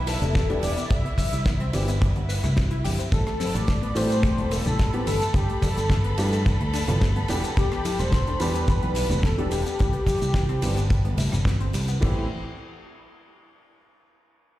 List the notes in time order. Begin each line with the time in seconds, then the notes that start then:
Already playing: B1 E3 G3 B3 D4 E4 G4 E5
0.07 E4 A4, open hi-hat, ride, shaker
0.21 E1 G3, closed hi-hat, low conga, shaker
0.34 B3, kick, snare, closed hi-hat, shaker
0.36 shaker
0.49 E3 G3 B3 D4 G4, closed hi-hat
0.62 E1 G3 D5, open hi-hat, ride, shaker
0.64 shaker
0.77 B3, closed hi-hat, shaker
0.90 C2 G3 E5, kick, closed hi-hat, shaker
1.05 B3, closed hi-hat
1.18 E4 E5, kick, open hi-hat, ride, high conga, shaker
1.32 C2 G3, closed hi-hat, shaker
1.46 B3, kick, snare, closed hi-hat, shaker
1.60 C4, closed hi-hat
1.73 G1 E3 G3 B3 C4 G4, open hi-hat, ride, shaker
1.88 B3, closed hi-hat, shaker
2.01 G3, kick, closed hi-hat, shaker
2.16 G1 B3, closed hi-hat
2.29 B4, open hi-hat, ride, shaker
2.43 C2 E4, cross-stick, closed hi-hat, low conga, shaker
2.57 C4, kick, snare, closed hi-hat, shaker
2.71 E4, closed hi-hat
2.84 G1 G4, open hi-hat, ride, high conga, shaker
2.99 C4, closed hi-hat, shaker
3.12 A1 G3 A4 B5, kick, closed hi-hat, shaker
3.27 A3, cross-stick, closed hi-hat
3.40 C4, open hi-hat, ride, high conga, shaker
3.54 A1 G3 D5, closed hi-hat, shaker
3.68 A3, kick, snare, closed hi-hat, shaker
3.82 B3, closed hi-hat
3.95 A2 E3 G3 A3 C4 G4 C5, open hi-hat, ride, shaker
4.10 A3, closed hi-hat, shaker
4.23 G3, kick, cross-stick, closed hi-hat, shaker
4.38 E1 A3, closed hi-hat
4.51 C4 A4, open hi-hat, ride, shaker
4.53 shaker
4.65 A1 G3, closed hi-hat, low conga, shaker
4.79 A3, kick, snare, closed hi-hat, shaker
4.93 E3 A3 B3 C4 G4, closed hi-hat
5.06 G1 G3 A4, open hi-hat, ride, shaker
5.21 A3, closed hi-hat, shaker
5.22 shaker
5.34 G1 G3 G4, kick, closed hi-hat, shaker
5.49 A3, closed hi-hat
5.62 D4 A4, kick, open hi-hat, ride, high conga, shaker
5.76 G1 G3, closed hi-hat, shaker
5.90 A3, kick, snare, closed hi-hat, shaker
6.04 B3, closed hi-hat
6.18 G2 F3 G3 A3 B3 E4 G4, open hi-hat, ride, shaker
6.19 shaker
6.33 A3, closed hi-hat, shaker
6.46 G3, kick, closed hi-hat, shaker
6.60 D2 A3, closed hi-hat
6.73 D4, open hi-hat, ride, shaker
6.75 shaker
6.88 G1 F3 G3 A3 B3 E4 A4, cross-stick, closed hi-hat, low conga, shaker
7.01 A3, kick, snare, closed hi-hat, shaker
7.16 B3, closed hi-hat
7.28 E1 E3 G3 B3 D4 G4, open hi-hat, ride, shaker
7.44 B3, closed hi-hat, shaker
7.57 E1 G3 G4, kick, closed hi-hat, shaker
7.72 B3, cross-stick, closed hi-hat
7.85 E4, open hi-hat, ride, high conga, shaker
7.99 E1 G3 C5, closed hi-hat, shaker
8.12 B3, kick, snare, closed hi-hat, shaker
8.27 D4, closed hi-hat
8.40 E2 E3 G3 B3 D4 G4 B4, open hi-hat, ride, shaker
8.55 B3, closed hi-hat, shaker
8.68 G3, kick, cross-stick, closed hi-hat, shaker
8.83 B1 B3, closed hi-hat
8.95 E4, open hi-hat, ride, shaker
8.97 shaker
9.10 E1 G3, closed hi-hat, low conga, shaker
9.23 B3 A4, kick, snare, closed hi-hat, shaker
9.38 E3 G3 B3 D4 G4, closed hi-hat
9.51 E1 G3 G4, open hi-hat, ride, shaker
9.66 B3, closed hi-hat, shaker
9.79 C2 G3, kick, closed hi-hat, shaker
9.93 B3, closed hi-hat
10.06 E4, kick, open hi-hat, ride, high conga, shaker
10.21 C2 G3, closed hi-hat, shaker
10.34 B3, kick, snare, closed hi-hat, shaker
10.49 C4, closed hi-hat
10.62 G1 E3 G3 B3 C4 G4, open hi-hat, ride, shaker
10.76 B3, closed hi-hat, shaker
10.78 shaker
10.90 G3, kick, closed hi-hat, shaker
11.05 G1 B3, closed hi-hat
11.17 E4, open hi-hat, ride, low conga, shaker
11.19 shaker
11.32 G1 G3, cross-stick, closed hi-hat, low conga, shaker
11.45 B3, kick, snare, shaker
11.47 closed hi-hat, shaker
11.60 C4, closed hi-hat
11.73 C2 G3, open hi-hat, ride, shaker
11.88 B3, closed hi-hat, shaker
12.01 A1 E3 G3 A3 B3 C4 E4 G4, kick, crash